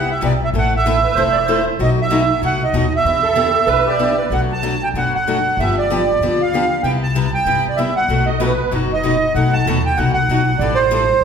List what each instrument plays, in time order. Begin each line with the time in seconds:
Already playing: upright bass C2, steel-string acoustic guitar C3 G3 B3 E4 G4
0.11 accordion E5
0.21 upright bass B1, steel-string acoustic guitar C3 G3 B3 E4 G4, accordion D5
0.45 accordion E5
0.54 upright bass A1, steel-string acoustic guitar E3 A3 C4 E4 A4
0.58 accordion F#5
0.77 accordion E5
0.86 steel-string acoustic guitar E3 A3 C4 E4 A4
1.02 accordion B4
1.15 upright bass E1, steel-string acoustic guitar E3 A3 C4 E4 A4, accordion C5
1.32 accordion D5
1.46 steel-string acoustic guitar E3 A3 C4 E4 A4, accordion C5
1.79 upright bass B1, steel-string acoustic guitar B2 F#3 A3 D#4 F#4, accordion D#5
2.02 accordion E5
2.10 steel-string acoustic guitar B2 F#3 A3 D#4 F#4
2.42 upright bass C2, steel-string acoustic guitar B2 F#3 A3 D#4 F#4, accordion F#5
2.64 accordion D#5
2.73 upright bass D#2, steel-string acoustic guitar B2 F#3 A3 D#4 F#4
2.77 accordion D#5
2.96 accordion E5
3.05 upright bass E2, steel-string acoustic guitar E3 B3 D4 G4
3.23 accordion A4
3.35 steel-string acoustic guitar E3 B3 D4 G4
3.67 upright bass B1, steel-string acoustic guitar E3 B3 D4 G4, accordion B4
3.86 accordion G4 D5
3.99 steel-string acoustic guitar E3 B3 D4 G4, accordion G4
4.18 accordion B4
4.30 upright bass B1, steel-string acoustic guitar B2 F#3 A3 D4 F#4, accordion F#5
4.52 accordion A5
4.62 steel-string acoustic guitar B2 F#3 A3 D4 F#4
4.83 accordion G5
4.94 upright bass F#1, steel-string acoustic guitar B2 F#3 A3 D4 F#4, accordion F#5
5.15 accordion F#5
5.27 steel-string acoustic guitar B2 F#3 A3 D4 F#4
5.57 upright bass G1, steel-string acoustic guitar D3 F3 B3 D4 G4, accordion E5
5.78 accordion D5
5.90 steel-string acoustic guitar D3 F3 B3 D4 G4
6.20 upright bass D2, steel-string acoustic guitar D3 F3 B3 D4 G4
6.42 accordion F5
6.53 steel-string acoustic guitar D3 F3 B3 D4 G4
6.83 upright bass C2, steel-string acoustic guitar C3 G3 B3 E4 G4, accordion G5
7.03 accordion A5
7.15 steel-string acoustic guitar C3 G3 B3 E4 G4
7.34 accordion G5
7.46 upright bass G1, steel-string acoustic guitar C3 G3 B3 E4 G4
7.69 accordion D5
7.77 steel-string acoustic guitar C3 G3 B3 E4 G4, accordion E5
7.96 accordion F#5
8.08 upright bass B1, steel-string acoustic guitar B2 F#3 A3 D#4 F#4
8.26 accordion D#5
8.39 steel-string acoustic guitar B2 F#3 A3 D#4 F#4, accordion B4
8.71 upright bass F#1, steel-string acoustic guitar B2 F#3 A3 D#4 F#4
8.93 accordion D#5
9.03 steel-string acoustic guitar B2 F#3 A3 D#4 F#4
9.35 upright bass B1, steel-string acoustic guitar B2 F#3 A3 D#4 F#4, accordion F#5
9.53 accordion A5
9.66 upright bass D#2, steel-string acoustic guitar B2 F#3 A3 D#4 F#4
9.86 accordion G5
9.97 upright bass C2, steel-string acoustic guitar B2 F#3 A3 D#4 F#4, accordion F#5
10.13 accordion F#5
10.28 upright bass B1, steel-string acoustic guitar B2 F#3 A3 D#4 F#4
10.59 upright bass A1, steel-string acoustic guitar E3 G3 C4 E4 A4, accordion D5
10.75 accordion C5
10.91 steel-string acoustic guitar E3 G3 C4 E4 A4